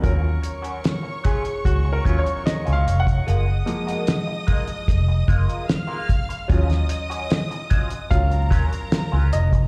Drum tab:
HH |x-xxx-xxx-xxxxxx|x-xxx-xxx-xxx-xx|xxxxxxxxxxxxx-xx|
SD |----o-------o---|----o-------o---|-o--o-------o---|
BD |o-----o-o-o----o|------o-o-o---o-|o-----o-o-o----o|